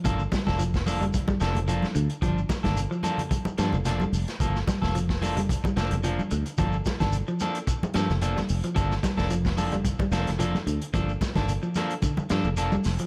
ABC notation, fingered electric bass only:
X:1
M:4/4
L:1/16
Q:"Swing 16ths" 1/4=110
K:Gm
V:1 name="Fingered electric bass" clef=bass
G,,,2 z F,,,6- F,,, F,,,4 D,, z | G,,,2 z G,,,2 z4 z G,, F,,,3 F,,, z | G,,,2 z F,,,6- F,,, F,,,4 D,, z | G,,,2 z G,,,2 z4 z G,, F,,,3 F,,, z |
G,,,2 z F,,,6- F,,, F,,,4 D,, z | G,,,2 z G,,,2 z4 z G,, F,,,3 F,,, z |]